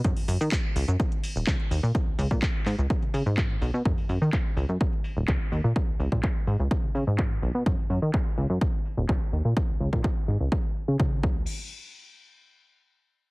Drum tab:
HH |xoo-x-oxxxo-xxo-|x-o-x-oxxxo-xxo-|xoo---oxxxo---o-|--o---ox-xo---o-|
SH |x-xx--xxx-xx--xx|x-xxx-xxx-xxx-xx|x-xx--xx--xx--xx|--x---xx--xx--xx|
CP |----x-------x---|----x-x-----x---|----x-------x---|----x-------x---|
BD |o---o---o---o---|o--oo---o---o---|o---o---o---o---|o--oo---o---o---|

HH |-oo---ox--o---o-|--o---ox--ox----|----------------|
SH |--xx--xx--xx--xx|--x---xx--xx----|----------------|
CP |----x-------x---|----x-x-----x---|----------------|
BD |o---o---o---o---|o--oo---o---o-o-|----------------|